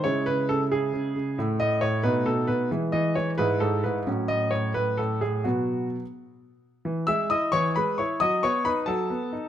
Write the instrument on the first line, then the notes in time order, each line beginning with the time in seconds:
grand piano
0.04 C#3 G#3 E4 C#5
0.26 C#3 B4
0.49 C#3 A4
0.72 C#3 G#4
0.93 C#3
1.16 C#3
1.38 A2 A3 E4
1.60 A2 D#5
1.81 A2 C#5
2.03 B2 A3 D#4 B4
2.26 B2 A4
2.47 B2 B4
2.71 E3 G#3 E4
2.92 E3 D#5
3.15 E3 C#5
3.38 G#2 G#3 E4 B4
3.60 G#2 A4
3.84 G#2 B4
4.07 A2 F#3 C#4
4.28 A2 D#5
4.51 A2 C#5
4.74 A2 B4
4.97 A2 A4
5.21 A2 G#4
5.44 B2 F#3 B3 F#4
6.85 E3
7.07 G#3 E5 E6
7.30 E4 D#5 D#6
7.52 E3 C#5 C#6
7.76 G#3 B4 B5
7.98 E4 C#5 C#6
8.20 F#3 D#5 D#6
8.43 B3 C#5 C#6
8.65 D#4 B4 B5
8.86 F#3 A4 A5
9.10 B3
9.33 D#4